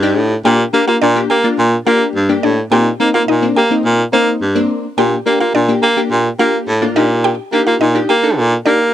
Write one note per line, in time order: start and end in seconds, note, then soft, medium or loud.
0.00 0.18 G2 medium
0.00 0.34 D4 medium
0.00 0.35 D#4 medium
0.00 0.35 G4 loud
0.17 0.35 A2 medium
0.45 0.64 A#2 loud
0.45 0.66 A#3 medium
0.45 0.66 D4 medium
0.45 0.66 G4 medium
0.45 0.65 G5 medium
0.73 1.05 A#3 medium
0.73 0.83 A#3 loud
0.73 1.05 D4 medium
0.73 1.05 G4 medium
0.88 0.97 A#3 loud
0.88 0.98 F4 medium
0.88 0.98 F5 medium
1.02 1.20 A#2 loud
1.02 1.22 D4 medium
1.02 1.22 D5 medium
1.16 1.37 A#3 medium
1.16 1.37 D4 medium
1.16 1.37 G4 medium
1.30 1.49 A#3 loud
1.30 1.40 G4 medium
1.30 1.40 G5 medium
1.44 1.76 A#3 medium
1.44 1.76 D4 medium
1.44 1.76 F4 medium
1.58 1.77 A#2 loud
1.86 2.18 A#3 medium
1.86 2.05 A#3 loud
1.86 2.19 D4 medium
1.86 2.07 F4 medium
1.86 2.19 G4 medium
1.86 2.07 F5 medium
2.15 2.33 G2 medium
2.29 2.61 A#3 medium
2.29 2.61 D4 medium
2.29 2.61 G4 medium
2.43 2.62 A2 medium
2.43 2.54 D4 medium
2.43 2.53 D5 medium
2.71 2.90 A#2 loud
2.71 2.93 A#3 medium
2.71 2.93 C4 medium
2.71 2.93 D#4 medium
2.71 2.92 G4 medium
2.71 2.92 G5 loud
3.00 3.32 A#3 medium
3.00 3.09 A#3 loud
3.00 3.32 C4 medium
3.00 3.32 D#4 medium
3.14 3.23 A#3 loud
3.14 3.25 F4 medium
3.14 3.24 F5 medium
3.28 3.47 A#2 medium
3.28 3.49 D#4 medium
3.28 3.48 D#5 medium
3.42 3.63 A#3 medium
3.42 3.64 C4 medium
3.42 3.64 D4 medium
3.56 3.75 A#3 loud
3.56 3.67 G4 medium
3.56 3.66 G5 medium
3.71 4.02 A#3 medium
3.71 4.03 C4 medium
3.71 4.03 D#4 medium
3.85 4.03 A#2 loud
4.13 4.45 A#3 medium
4.13 4.32 A#3 loud
4.13 4.45 C4 medium
4.13 4.33 C4 medium
4.13 4.45 D#4 medium
4.13 4.33 C5 medium
4.42 4.60 G2 medium
4.55 4.87 A#3 medium
4.55 4.87 C4 medium
4.55 4.87 D4 loud
4.98 5.16 A#2 loud
4.98 5.19 A#3 medium
4.98 5.19 D4 medium
4.98 5.19 G4 medium
4.98 5.18 G4 medium
4.98 5.18 G5 loud
5.26 5.58 A#3 medium
5.26 5.36 A#3 medium
5.26 5.58 D4 medium
5.26 5.58 G4 medium
5.40 5.50 A#3 medium
5.40 5.51 F4 medium
5.40 5.50 F5 medium
5.55 5.73 A#2 medium
5.55 5.75 D4 medium
5.55 5.75 D5 medium
5.68 5.90 A#3 medium
5.68 5.90 D4 medium
5.68 5.90 G4 medium
5.83 6.01 A#3 loud
5.83 5.93 G4 medium
5.83 5.93 G5 medium
5.97 6.29 A#3 medium
5.97 6.29 D4 medium
5.97 6.29 G4 medium
6.11 6.30 A#2 loud
6.39 6.71 A#3 medium
6.39 6.58 A#3 loud
6.39 6.71 D4 medium
6.39 6.60 F4 medium
6.39 6.71 G4 medium
6.39 6.59 F5 medium
6.68 6.86 A2 loud
6.82 6.96 A#3 medium
6.82 6.95 D4 medium
6.82 6.96 F4 medium
6.96 7.33 A#2 loud
6.96 7.41 D4 medium
6.96 7.41 D#4 medium
6.96 7.07 D#4 medium
6.96 7.41 G4 medium
6.96 7.06 D#5 medium
7.24 7.45 G4 medium
7.24 7.44 G5 loud
7.52 7.62 A#3 loud
7.52 7.84 D4 medium
7.52 7.84 D#4 medium
7.52 7.85 G4 medium
7.67 7.76 A#3 medium
7.67 7.77 F4 medium
7.67 7.77 F5 medium
7.81 7.99 A#2 medium
7.81 8.01 D#4 medium
7.81 8.01 D#5 medium
7.95 8.16 D4 medium
7.95 8.16 D#4 medium
7.95 8.16 G4 medium
8.09 8.39 A#3 loud
8.09 8.20 G4 medium
8.09 8.19 G5 medium
8.23 8.55 D4 medium
8.23 8.55 D#4 medium
8.23 8.55 A4 medium
8.37 8.56 A#2 loud
8.66 8.94 A#3 medium
8.66 8.94 D4 medium
8.66 8.86 D4 medium
8.66 8.94 D#4 medium
8.66 8.94 G4 medium
8.66 8.86 D5 medium